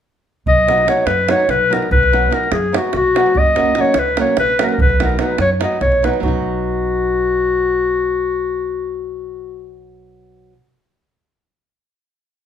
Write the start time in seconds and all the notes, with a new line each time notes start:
0.46 B1 D#5, davul low
0.57 davul high
0.67 F#3 B3 D#4 F#4, davul high
0.78 davul high
0.86 F#3 B3 D#4 F#4 C#5, davul high
0.97 davul high
1.06 F#2 B4, davul high
1.28 F#3 B3 D#4 F#4 C#5, davul high
1.40 davul high
1.48 B1 B4, davul high
1.70 F#3 B3 D#4 F#4 A#4, davul high
1.82 davul high
1.91 B1 B4, davul low
2.03 davul high
2.12 F#3 B3 D#4 F#4, davul high
2.30 F#3 B3 D#4 F#4 A#4, davul high
2.44 davul high
2.51 F#2 G#4, davul high
2.72 F#3 B3 D#4 F#4, davul high
2.77 F#4
2.84 davul high
2.93 B1 F#4, davul high
3.15 F#3 B3 D#4 F#4, davul high
3.26 davul high
3.35 F#1 D#5, davul low
3.46 davul high
3.55 F#3 A#3 C#4 F#4, davul high
3.75 F#3 A#3 C#4 F#4, davul high
3.81 C#5, davul high
3.94 C#2, davul high
3.99 B4
4.17 F#3 A#3 C#4 F#4 C#5, davul high
4.27 davul high
4.37 A#1 B4, davul high
4.59 F#3 A#3 C#4 F#4, davul high
4.64 A#4 B4
4.69 A#4, davul high
4.78 B1 B4, davul low
4.89 davul high
5.00 F#3 B3 D#4 F#4 A#4, davul high
5.19 F#3 B3 D#4 F#4, davul high
5.23 B4
5.38 F#2 C#5, davul high
5.60 F#3 B3 D#4 F#4 D#5, davul high
5.81 B1 C#5, davul high, davul low
5.92 davul high
6.03 F#3 B3 D#4 F#4 B4, davul high
6.14 davul high
6.20 B1 F#3 B3 F#4, davul low
6.25 D#4 F#4